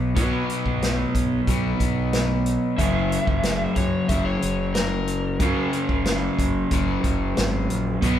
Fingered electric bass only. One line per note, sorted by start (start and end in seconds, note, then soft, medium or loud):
0.00 0.18 B1 medium
0.17 0.42 B2 medium
0.66 1.04 B1 medium
1.15 1.40 B1 medium
1.48 1.73 B1 medium
1.80 2.56 B1 medium
2.79 3.17 F#1 medium
3.27 3.65 F#1 medium
3.77 4.02 F#2 medium
4.09 4.35 F#1 medium
4.43 5.41 F#1 medium
5.40 5.66 F#2 medium
5.89 6.27 F#1 medium
6.38 6.64 F#1 medium
6.71 6.97 F#1 medium
7.04 7.33 F#1 medium
7.38 7.67 G#1 medium
7.70 7.99 A#1 medium
8.03 8.19 B1 medium